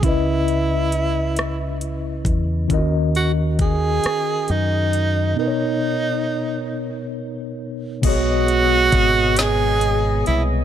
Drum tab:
CC |------|------|------|x-----|
HH |xxxxxx|xxxxxx|------|xxxxxx|
SD |---r--|---r--|------|---o--|
BD |o----o|o-o---|------|o-o---|